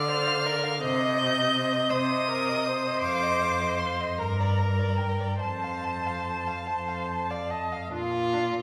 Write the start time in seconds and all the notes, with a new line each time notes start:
Already playing: D3 D5 F6
0.09 C5 D5
0.28 F5
0.46 A#4 D5
0.64 F5
0.80 C3 C5 D#5 G6
1.00 D#5
1.18 C5
1.38 D#5
1.55 C5
1.73 D#5
1.90 C3 C5 D#6
2.11 D#5
2.27 A#4 C5
2.49 D#5
2.65 C5
2.87 D#5
3.02 F2 F5 D6
3.24 D#5
3.42 F5
3.61 D#5
3.79 F5 C6
4.01 D#5
4.18 G2 A#4 A#5
4.40 D5
4.59 A#4
4.79 D5
4.98 A#4 G5
5.20 D5
5.40 F2 C5 A5
5.64 F5
5.84 A5
6.07 F5
6.27 A5
6.47 F5
6.66 F2 C5 A5
6.88 F5
7.08 A5
7.30 D5 F5
7.50 D#5 A5
7.72 F5
7.91 A#2 D4 F4 F5
8.33 D4